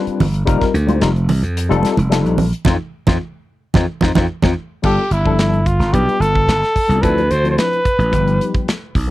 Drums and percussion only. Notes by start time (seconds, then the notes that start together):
0.07 closed hi-hat
0.20 open hi-hat, low conga
0.34 closed hi-hat
0.47 kick, closed hi-hat
0.61 kick, snare, closed hi-hat
0.75 closed hi-hat
0.89 closed hi-hat, high conga
1.01 snare, closed hi-hat
1.16 closed hi-hat
1.29 open hi-hat, low conga
1.44 closed hi-hat
1.57 closed hi-hat
1.72 closed hi-hat
1.83 snare, closed hi-hat, high conga
1.97 closed hi-hat, high conga
2.12 snare, closed hi-hat
2.26 closed hi-hat
2.38 open hi-hat, low conga
2.53 closed hi-hat
2.65 kick, snare, low conga
3.07 kick, snare, low conga
3.74 kick, snare, low conga
4.01 kick, snare, low conga
4.15 kick, snare, low conga
4.42 kick, snare, low conga
4.83 kick, crash
5.11 closed hi-hat
5.26 kick
5.39 snare, closed hi-hat
5.53 closed hi-hat
5.66 kick, closed hi-hat
5.81 snare, closed hi-hat
5.94 kick, closed hi-hat
6.09 closed hi-hat
6.22 closed hi-hat
6.35 kick
6.49 snare, closed hi-hat
6.63 snare, closed hi-hat
6.76 kick, open hi-hat
6.91 closed hi-hat
7.03 kick, closed hi-hat
7.18 closed hi-hat
7.31 closed hi-hat
7.45 closed hi-hat
7.58 snare, closed hi-hat
7.73 closed hi-hat
7.85 kick, closed hi-hat
8.00 closed hi-hat
8.13 kick, closed hi-hat
8.28 closed hi-hat
8.41 closed hi-hat
8.55 kick, closed hi-hat
8.68 snare, closed hi-hat
8.95 kick, open hi-hat